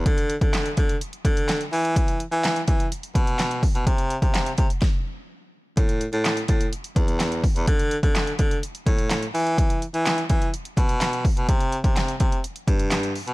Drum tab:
HH |xxxxxxxxxxxxxxox|xxxxxxxxxxxxxxox|xxxxxxxx--------|xxxxxxxxxxxxxxox|
CP |----x-------x---|----x-------x---|----x-----------|----x-------x---|
SD |----o-------o---|----o-------o---|----o---o-------|----o-------o---|
BD |o--o--o---o-----|o-----o---o---o-|o--o--o-o-------|o-----o---o---o-|

HH |xxxxxxxxxxxxxxox|xxxxxxxxxxxxxxox|xxxxxxxxxxxxxxox|
CP |----x-------x---|----x-------x---|----x-------x---|
SD |----o-------o---|----o-------o---|----o-------o---|
BD |o--o--o---o-----|o-----o---o---o-|o--o--o---o-----|